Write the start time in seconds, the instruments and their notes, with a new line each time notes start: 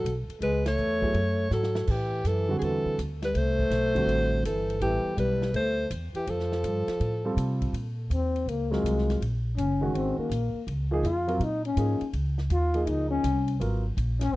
Already playing: trombone F#3, alto saxophone A4
0.04 upright bass B1, hi-hat pedal, ride
0.29 muted upright bass stroke, ride
0.41 upright bass C#2, trombone G#3, alto saxophone B4, ride
0.66 trombone A3, alto saxophone C#5, snare, ride
0.77 upright bass E2, hi-hat pedal
1.01 grand piano F#3 B3 E4 G#4, kick
1.14 upright bass F#2, ride
1.51 upright bass G#2, trombone F#3, alto saxophone A4, snare, hi-hat pedal
1.63 snare
1.75 snare
1.87 upright bass A2, trombone E3, alto saxophone G4, kick, crash
2.24 upright bass F#2, trombone E3, alto saxophone A4, hi-hat pedal, ride
2.49 grand piano D3 G3 C4 F#4
2.56 trombone E3, alto saxophone G#4
2.60 upright bass E2, trombone E3, alto saxophone A4, ride
2.85 muted upright bass stroke
2.98 upright bass D2, hi-hat pedal, ride
3.22 trombone G3, alto saxophone B4, snare, ride
3.34 upright bass C2, trombone A3, alto saxophone C5, ride
3.59 kick
3.70 upright bass B1, snare, hi-hat pedal, ride
3.95 grand piano D3 G3 C4 F#4, kick, ride
4.07 upright bass A1, ride
4.43 upright bass G1, trombone E3, alto saxophone A4, hi-hat pedal, ride
4.70 ride
4.80 upright bass A1, trombone E3, grand piano G3 B3 E4 A4, alto saxophone G4, ride
5.16 upright bass B1, trombone G3, alto saxophone B4, hi-hat pedal, ride
5.42 snare
5.53 upright bass D2, trombone A3, alto saxophone C5, ride
5.90 upright bass E2, hi-hat pedal, ride
6.14 trombone E3, alto saxophone G4, muted upright bass stroke, ride
6.27 upright bass F2, trombone F3, alto saxophone A4, ride
6.40 snare
6.52 snare
6.64 upright bass G2, hi-hat pedal, ride
6.88 muted upright bass stroke, snare, ride
7.00 upright bass A2, ride
7.25 grand piano G3 C4 F4 A4
7.37 upright bass C3, hi-hat pedal, ride
7.62 kick, ride
7.73 upright bass A#2, ride
8.10 upright bass D#2, trombone C4, hi-hat pedal, ride
8.36 ride
8.46 upright bass C#2, trombone A#3, ride
8.71 grand piano F#3 C4 F4 A#4, trombone G#3, snare
8.84 upright bass C2, hi-hat pedal, ride
8.98 snare
9.10 snare, ride
9.21 upright bass A#1, ride
9.57 upright bass F#1, trombone C#4, hi-hat pedal, ride
9.81 grand piano D#3 G#3 C#4 F#4
9.94 upright bass G#1, trombone C4, ride
10.18 trombone A#3, muted upright bass stroke
10.30 upright bass A#1, hi-hat pedal, ride
10.54 muted upright bass stroke
10.67 upright bass C#2, ride
10.91 grand piano F3 A#3 D#4 G#4
11.03 upright bass F2, trombone F4, hi-hat pedal, ride
11.28 grand piano F#3 C4 F4 A#4, ride
11.40 upright bass A#2, trombone D#4, ride
11.65 trombone C#4, ride
11.77 upright bass G#2, grand piano F3 A#3 D#4 G#4, hi-hat pedal, ride
12.01 muted upright bass stroke, ride
12.13 upright bass C#2, ride
12.38 snare
12.50 upright bass D#2, trombone F4, hi-hat pedal, ride
12.74 grand piano F3 A#3 D#4 G#4, ride
12.87 upright bass C#2, trombone D#4, ride
13.10 trombone C#4
13.24 upright bass C2, hi-hat pedal, ride
13.48 ride
13.60 upright bass G#1, grand piano F#3 B3 F4 A#4, ride
13.97 upright bass A#1, hi-hat pedal, ride
14.21 trombone C#4, snare, ride
14.33 upright bass B1